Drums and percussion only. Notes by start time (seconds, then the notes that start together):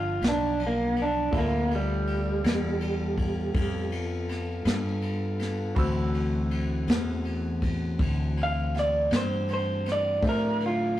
0.22 snare, ride
0.59 ride
0.96 ride
1.33 kick, ride
1.71 ride
2.07 ride
2.44 snare, ride
2.80 ride
3.18 kick, ride
3.54 kick, ride
3.92 ride
4.29 snare, ride
4.65 snare, ride
5.02 ride
5.39 snare, ride
5.76 kick, ride
6.14 ride
6.51 ride
6.88 snare, ride
7.25 ride
7.62 kick, ride
7.99 kick, ride
8.37 ride
8.74 snare, ride
9.10 snare, ride
9.48 ride
9.86 snare, ride
10.23 kick, ride
10.60 ride
10.97 ride